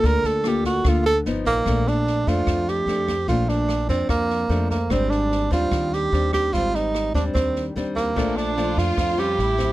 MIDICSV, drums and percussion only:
0, 0, Header, 1, 2, 480
1, 0, Start_track
1, 0, Key_signature, -2, "major"
1, 0, Tempo, 405954
1, 48, Time_signature, 4, 2, 24, 8
1, 11499, End_track
2, 0, Start_track
2, 0, Title_t, "Drums"
2, 45, Note_on_c, 9, 36, 64
2, 45, Note_on_c, 9, 38, 24
2, 163, Note_off_c, 9, 36, 0
2, 163, Note_off_c, 9, 38, 0
2, 282, Note_on_c, 9, 38, 25
2, 400, Note_off_c, 9, 38, 0
2, 519, Note_on_c, 9, 37, 59
2, 519, Note_on_c, 9, 38, 25
2, 637, Note_off_c, 9, 37, 0
2, 637, Note_off_c, 9, 38, 0
2, 760, Note_on_c, 9, 38, 28
2, 761, Note_on_c, 9, 36, 29
2, 879, Note_off_c, 9, 36, 0
2, 879, Note_off_c, 9, 38, 0
2, 1000, Note_on_c, 9, 37, 65
2, 1000, Note_on_c, 9, 38, 27
2, 1002, Note_on_c, 9, 36, 60
2, 1118, Note_off_c, 9, 37, 0
2, 1118, Note_off_c, 9, 38, 0
2, 1121, Note_off_c, 9, 36, 0
2, 1243, Note_on_c, 9, 38, 25
2, 1361, Note_off_c, 9, 38, 0
2, 1482, Note_on_c, 9, 38, 24
2, 1600, Note_off_c, 9, 38, 0
2, 1719, Note_on_c, 9, 38, 26
2, 1720, Note_on_c, 9, 36, 28
2, 1837, Note_off_c, 9, 38, 0
2, 1838, Note_off_c, 9, 36, 0
2, 1960, Note_on_c, 9, 37, 55
2, 1960, Note_on_c, 9, 38, 23
2, 1961, Note_on_c, 9, 36, 53
2, 2078, Note_off_c, 9, 37, 0
2, 2078, Note_off_c, 9, 38, 0
2, 2079, Note_off_c, 9, 36, 0
2, 2206, Note_on_c, 9, 38, 22
2, 2325, Note_off_c, 9, 38, 0
2, 2444, Note_on_c, 9, 38, 21
2, 2562, Note_off_c, 9, 38, 0
2, 2681, Note_on_c, 9, 36, 24
2, 2686, Note_on_c, 9, 38, 24
2, 2799, Note_off_c, 9, 36, 0
2, 2804, Note_off_c, 9, 38, 0
2, 2918, Note_on_c, 9, 37, 59
2, 2918, Note_on_c, 9, 38, 21
2, 2921, Note_on_c, 9, 36, 55
2, 3036, Note_off_c, 9, 37, 0
2, 3036, Note_off_c, 9, 38, 0
2, 3039, Note_off_c, 9, 36, 0
2, 3162, Note_on_c, 9, 38, 22
2, 3280, Note_off_c, 9, 38, 0
2, 3401, Note_on_c, 9, 38, 25
2, 3519, Note_off_c, 9, 38, 0
2, 3639, Note_on_c, 9, 36, 23
2, 3643, Note_on_c, 9, 37, 60
2, 3643, Note_on_c, 9, 38, 25
2, 3758, Note_off_c, 9, 36, 0
2, 3762, Note_off_c, 9, 37, 0
2, 3762, Note_off_c, 9, 38, 0
2, 3873, Note_on_c, 9, 38, 23
2, 3878, Note_on_c, 9, 36, 58
2, 3991, Note_off_c, 9, 38, 0
2, 3997, Note_off_c, 9, 36, 0
2, 4118, Note_on_c, 9, 38, 23
2, 4237, Note_off_c, 9, 38, 0
2, 4357, Note_on_c, 9, 37, 57
2, 4357, Note_on_c, 9, 38, 22
2, 4476, Note_off_c, 9, 37, 0
2, 4476, Note_off_c, 9, 38, 0
2, 4595, Note_on_c, 9, 38, 25
2, 4597, Note_on_c, 9, 36, 25
2, 4714, Note_off_c, 9, 38, 0
2, 4716, Note_off_c, 9, 36, 0
2, 4835, Note_on_c, 9, 37, 58
2, 4835, Note_on_c, 9, 38, 23
2, 4838, Note_on_c, 9, 36, 58
2, 4954, Note_off_c, 9, 37, 0
2, 4954, Note_off_c, 9, 38, 0
2, 4956, Note_off_c, 9, 36, 0
2, 5082, Note_on_c, 9, 38, 22
2, 5200, Note_off_c, 9, 38, 0
2, 5319, Note_on_c, 9, 38, 22
2, 5437, Note_off_c, 9, 38, 0
2, 5557, Note_on_c, 9, 36, 24
2, 5559, Note_on_c, 9, 38, 24
2, 5675, Note_off_c, 9, 36, 0
2, 5677, Note_off_c, 9, 38, 0
2, 5795, Note_on_c, 9, 37, 59
2, 5795, Note_on_c, 9, 38, 23
2, 5798, Note_on_c, 9, 36, 55
2, 5913, Note_off_c, 9, 37, 0
2, 5913, Note_off_c, 9, 38, 0
2, 5916, Note_off_c, 9, 36, 0
2, 6043, Note_on_c, 9, 38, 21
2, 6161, Note_off_c, 9, 38, 0
2, 6284, Note_on_c, 9, 38, 23
2, 6402, Note_off_c, 9, 38, 0
2, 6517, Note_on_c, 9, 38, 25
2, 6518, Note_on_c, 9, 36, 26
2, 6636, Note_off_c, 9, 36, 0
2, 6636, Note_off_c, 9, 38, 0
2, 6755, Note_on_c, 9, 37, 58
2, 6755, Note_on_c, 9, 38, 22
2, 6758, Note_on_c, 9, 36, 61
2, 6873, Note_off_c, 9, 37, 0
2, 6873, Note_off_c, 9, 38, 0
2, 6876, Note_off_c, 9, 36, 0
2, 7003, Note_on_c, 9, 38, 23
2, 7122, Note_off_c, 9, 38, 0
2, 7245, Note_on_c, 9, 38, 23
2, 7363, Note_off_c, 9, 38, 0
2, 7482, Note_on_c, 9, 36, 26
2, 7484, Note_on_c, 9, 37, 58
2, 7484, Note_on_c, 9, 38, 24
2, 7600, Note_off_c, 9, 36, 0
2, 7602, Note_off_c, 9, 37, 0
2, 7602, Note_off_c, 9, 38, 0
2, 7723, Note_on_c, 9, 36, 57
2, 7723, Note_on_c, 9, 38, 23
2, 7841, Note_off_c, 9, 36, 0
2, 7842, Note_off_c, 9, 38, 0
2, 7970, Note_on_c, 9, 38, 23
2, 8088, Note_off_c, 9, 38, 0
2, 8209, Note_on_c, 9, 37, 52
2, 8209, Note_on_c, 9, 38, 22
2, 8328, Note_off_c, 9, 37, 0
2, 8328, Note_off_c, 9, 38, 0
2, 8448, Note_on_c, 9, 36, 23
2, 8454, Note_on_c, 9, 38, 25
2, 8566, Note_off_c, 9, 36, 0
2, 8573, Note_off_c, 9, 38, 0
2, 8690, Note_on_c, 9, 36, 56
2, 8693, Note_on_c, 9, 37, 58
2, 8693, Note_on_c, 9, 38, 25
2, 8808, Note_off_c, 9, 36, 0
2, 8811, Note_off_c, 9, 37, 0
2, 8811, Note_off_c, 9, 38, 0
2, 8932, Note_on_c, 9, 38, 21
2, 9050, Note_off_c, 9, 38, 0
2, 9175, Note_on_c, 9, 38, 22
2, 9293, Note_off_c, 9, 38, 0
2, 9414, Note_on_c, 9, 36, 24
2, 9423, Note_on_c, 9, 38, 25
2, 9532, Note_off_c, 9, 36, 0
2, 9541, Note_off_c, 9, 38, 0
2, 9656, Note_on_c, 9, 36, 58
2, 9666, Note_on_c, 9, 37, 58
2, 9666, Note_on_c, 9, 38, 22
2, 9774, Note_off_c, 9, 36, 0
2, 9785, Note_off_c, 9, 37, 0
2, 9785, Note_off_c, 9, 38, 0
2, 9898, Note_on_c, 9, 38, 24
2, 10016, Note_off_c, 9, 38, 0
2, 10142, Note_on_c, 9, 38, 22
2, 10261, Note_off_c, 9, 38, 0
2, 10372, Note_on_c, 9, 36, 24
2, 10379, Note_on_c, 9, 38, 25
2, 10491, Note_off_c, 9, 36, 0
2, 10497, Note_off_c, 9, 38, 0
2, 10612, Note_on_c, 9, 36, 58
2, 10613, Note_on_c, 9, 37, 57
2, 10613, Note_on_c, 9, 38, 23
2, 10730, Note_off_c, 9, 36, 0
2, 10731, Note_off_c, 9, 37, 0
2, 10731, Note_off_c, 9, 38, 0
2, 10855, Note_on_c, 9, 38, 21
2, 10973, Note_off_c, 9, 38, 0
2, 11097, Note_on_c, 9, 38, 22
2, 11215, Note_off_c, 9, 38, 0
2, 11333, Note_on_c, 9, 36, 25
2, 11339, Note_on_c, 9, 37, 59
2, 11339, Note_on_c, 9, 38, 23
2, 11451, Note_off_c, 9, 36, 0
2, 11457, Note_off_c, 9, 37, 0
2, 11457, Note_off_c, 9, 38, 0
2, 11499, End_track
0, 0, End_of_file